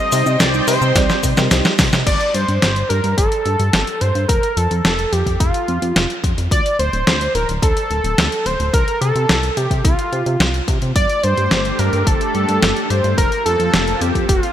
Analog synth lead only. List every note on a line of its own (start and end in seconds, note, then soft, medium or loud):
0.00 0.41 D#5 loud
0.40 0.67 D5 loud
0.67 1.19 C5 medium
2.06 2.35 D5 loud
2.34 2.89 C5 loud
2.89 3.15 A#4 loud
3.17 4.02 A4 loud
4.01 4.28 C5 loud
4.28 4.58 A#4 loud
4.56 4.84 A4 medium
4.84 5.14 A4 medium
5.12 5.40 G4 medium
5.40 6.19 F4 medium
6.52 6.77 D5 loud
6.79 7.05 C5 loud
7.07 7.33 C5 loud
7.35 7.47 A#4 loud
7.63 8.47 A4 loud
8.46 8.73 C5 loud
8.74 8.99 A#4 loud
9.01 9.58 A4 loud
9.57 9.84 G4 medium
9.84 10.64 F4 medium
10.95 11.25 D5 loud
11.23 11.80 C5 loud
11.79 12.08 A#4 loud
12.07 12.91 A4 loud
12.90 13.17 C5 loud
13.18 13.44 A#4 loud
13.46 14.02 A4 loud
14.01 14.28 G4 medium
14.29 14.53 F4 medium